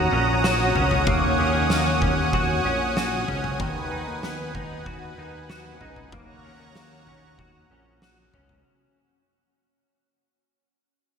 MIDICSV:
0, 0, Header, 1, 5, 480
1, 0, Start_track
1, 0, Key_signature, -6, "minor"
1, 0, Tempo, 631579
1, 814, Time_signature, 4, 2, 24, 8
1, 8500, End_track
2, 0, Start_track
2, 0, Title_t, "Analog synth pad"
2, 0, Program_c, 0, 89
2, 0, Note_on_c, 0, 73, 82
2, 0, Note_on_c, 0, 78, 78
2, 0, Note_on_c, 0, 82, 77
2, 0, Note_on_c, 0, 87, 87
2, 794, Note_off_c, 0, 82, 0
2, 814, Note_on_c, 0, 80, 75
2, 2702, Note_off_c, 0, 73, 0
2, 2741, Note_on_c, 0, 71, 76
2, 4624, Note_off_c, 0, 80, 0
2, 4628, Note_off_c, 0, 78, 0
2, 4638, Note_off_c, 0, 71, 0
2, 4653, Note_on_c, 0, 73, 74
2, 4653, Note_on_c, 0, 78, 75
2, 4655, Note_on_c, 0, 82, 73
2, 6542, Note_off_c, 0, 87, 0
2, 6555, Note_off_c, 0, 73, 0
2, 6555, Note_off_c, 0, 78, 0
2, 6555, Note_off_c, 0, 82, 0
2, 8500, End_track
3, 0, Start_track
3, 0, Title_t, "Clean electric guitar"
3, 0, Program_c, 1, 27
3, 0, Note_on_c, 1, 58, 55
3, 0, Note_on_c, 1, 61, 49
3, 0, Note_on_c, 1, 66, 57
3, 84, Note_off_c, 1, 61, 0
3, 93, Note_on_c, 1, 61, 54
3, 332, Note_off_c, 1, 66, 0
3, 335, Note_on_c, 1, 66, 58
3, 564, Note_off_c, 1, 61, 0
3, 573, Note_on_c, 1, 61, 53
3, 804, Note_off_c, 1, 58, 0
3, 813, Note_on_c, 1, 58, 68
3, 1046, Note_off_c, 1, 61, 0
3, 1055, Note_on_c, 1, 61, 49
3, 1288, Note_off_c, 1, 58, 0
3, 1297, Note_on_c, 1, 58, 53
3, 1526, Note_off_c, 1, 61, 0
3, 1535, Note_on_c, 1, 61, 48
3, 1773, Note_off_c, 1, 66, 0
3, 1776, Note_on_c, 1, 66, 54
3, 2005, Note_off_c, 1, 61, 0
3, 2014, Note_on_c, 1, 61, 52
3, 2252, Note_off_c, 1, 66, 0
3, 2255, Note_on_c, 1, 66, 54
3, 2487, Note_off_c, 1, 61, 0
3, 2496, Note_on_c, 1, 61, 55
3, 2735, Note_on_c, 1, 51, 62
3, 2783, Note_off_c, 1, 61, 0
3, 2784, Note_off_c, 1, 58, 0
3, 2976, Note_on_c, 1, 63, 48
3, 3215, Note_on_c, 1, 59, 56
3, 3452, Note_off_c, 1, 63, 0
3, 3455, Note_on_c, 1, 63, 46
3, 3694, Note_off_c, 1, 66, 0
3, 3697, Note_on_c, 1, 66, 56
3, 3933, Note_off_c, 1, 63, 0
3, 3936, Note_on_c, 1, 63, 49
3, 4174, Note_off_c, 1, 66, 0
3, 4177, Note_on_c, 1, 66, 58
3, 4414, Note_off_c, 1, 63, 0
3, 4417, Note_on_c, 1, 63, 57
3, 4653, Note_off_c, 1, 59, 0
3, 4656, Note_on_c, 1, 58, 64
3, 4894, Note_off_c, 1, 63, 0
3, 4897, Note_on_c, 1, 61, 47
3, 4920, Note_off_c, 1, 51, 0
3, 5135, Note_off_c, 1, 58, 0
3, 5139, Note_on_c, 1, 58, 52
3, 5377, Note_off_c, 1, 61, 0
3, 5380, Note_on_c, 1, 61, 48
3, 5615, Note_off_c, 1, 66, 0
3, 5618, Note_on_c, 1, 66, 51
3, 5856, Note_off_c, 1, 61, 0
3, 5859, Note_on_c, 1, 61, 49
3, 6096, Note_off_c, 1, 66, 0
3, 6099, Note_on_c, 1, 66, 55
3, 6335, Note_off_c, 1, 61, 0
3, 6338, Note_on_c, 1, 61, 48
3, 7004, Note_off_c, 1, 61, 0
3, 7005, Note_off_c, 1, 58, 0
3, 7005, Note_off_c, 1, 66, 0
3, 8500, End_track
4, 0, Start_track
4, 0, Title_t, "Analog synth bass"
4, 0, Program_c, 2, 38
4, 95, Note_on_c, 2, 34, 91
4, 551, Note_off_c, 2, 34, 0
4, 573, Note_on_c, 2, 37, 84
4, 814, Note_on_c, 2, 39, 93
4, 825, Note_off_c, 2, 37, 0
4, 1156, Note_off_c, 2, 39, 0
4, 1173, Note_on_c, 2, 39, 86
4, 1288, Note_off_c, 2, 39, 0
4, 1291, Note_on_c, 2, 39, 91
4, 1982, Note_off_c, 2, 39, 0
4, 2013, Note_on_c, 2, 34, 80
4, 2470, Note_off_c, 2, 34, 0
4, 2494, Note_on_c, 2, 37, 75
4, 2722, Note_off_c, 2, 37, 0
4, 2735, Note_on_c, 2, 39, 98
4, 3077, Note_off_c, 2, 39, 0
4, 3095, Note_on_c, 2, 39, 87
4, 3209, Note_off_c, 2, 39, 0
4, 3217, Note_on_c, 2, 39, 85
4, 3905, Note_off_c, 2, 39, 0
4, 3937, Note_on_c, 2, 39, 89
4, 4392, Note_off_c, 2, 39, 0
4, 4417, Note_on_c, 2, 37, 86
4, 4644, Note_off_c, 2, 37, 0
4, 4656, Note_on_c, 2, 39, 90
4, 4997, Note_off_c, 2, 39, 0
4, 5016, Note_on_c, 2, 39, 93
4, 5129, Note_off_c, 2, 39, 0
4, 5134, Note_on_c, 2, 39, 87
4, 5824, Note_off_c, 2, 39, 0
4, 5855, Note_on_c, 2, 34, 83
4, 6311, Note_off_c, 2, 34, 0
4, 6336, Note_on_c, 2, 37, 74
4, 6563, Note_off_c, 2, 37, 0
4, 8500, End_track
5, 0, Start_track
5, 0, Title_t, "Drums"
5, 336, Note_on_c, 9, 38, 95
5, 412, Note_off_c, 9, 38, 0
5, 573, Note_on_c, 9, 43, 58
5, 649, Note_off_c, 9, 43, 0
5, 692, Note_on_c, 9, 43, 57
5, 768, Note_off_c, 9, 43, 0
5, 812, Note_on_c, 9, 43, 88
5, 813, Note_on_c, 9, 36, 91
5, 888, Note_off_c, 9, 43, 0
5, 889, Note_off_c, 9, 36, 0
5, 1292, Note_on_c, 9, 38, 92
5, 1368, Note_off_c, 9, 38, 0
5, 1533, Note_on_c, 9, 43, 50
5, 1534, Note_on_c, 9, 36, 69
5, 1609, Note_off_c, 9, 43, 0
5, 1610, Note_off_c, 9, 36, 0
5, 1773, Note_on_c, 9, 36, 70
5, 1849, Note_off_c, 9, 36, 0
5, 2256, Note_on_c, 9, 38, 97
5, 2332, Note_off_c, 9, 38, 0
5, 2495, Note_on_c, 9, 43, 56
5, 2571, Note_off_c, 9, 43, 0
5, 2614, Note_on_c, 9, 43, 60
5, 2690, Note_off_c, 9, 43, 0
5, 2734, Note_on_c, 9, 43, 92
5, 2735, Note_on_c, 9, 36, 88
5, 2810, Note_off_c, 9, 43, 0
5, 2811, Note_off_c, 9, 36, 0
5, 3216, Note_on_c, 9, 38, 93
5, 3292, Note_off_c, 9, 38, 0
5, 3455, Note_on_c, 9, 43, 52
5, 3456, Note_on_c, 9, 36, 73
5, 3531, Note_off_c, 9, 43, 0
5, 3532, Note_off_c, 9, 36, 0
5, 3695, Note_on_c, 9, 36, 71
5, 3771, Note_off_c, 9, 36, 0
5, 4177, Note_on_c, 9, 38, 98
5, 4253, Note_off_c, 9, 38, 0
5, 4414, Note_on_c, 9, 43, 53
5, 4490, Note_off_c, 9, 43, 0
5, 4532, Note_on_c, 9, 43, 60
5, 4608, Note_off_c, 9, 43, 0
5, 4654, Note_on_c, 9, 43, 89
5, 4655, Note_on_c, 9, 36, 92
5, 4730, Note_off_c, 9, 43, 0
5, 4731, Note_off_c, 9, 36, 0
5, 5133, Note_on_c, 9, 38, 88
5, 5209, Note_off_c, 9, 38, 0
5, 5372, Note_on_c, 9, 43, 47
5, 5448, Note_off_c, 9, 43, 0
5, 5614, Note_on_c, 9, 36, 72
5, 5690, Note_off_c, 9, 36, 0
5, 6095, Note_on_c, 9, 38, 96
5, 6171, Note_off_c, 9, 38, 0
5, 6335, Note_on_c, 9, 43, 57
5, 6411, Note_off_c, 9, 43, 0
5, 6454, Note_on_c, 9, 43, 54
5, 6530, Note_off_c, 9, 43, 0
5, 8500, End_track
0, 0, End_of_file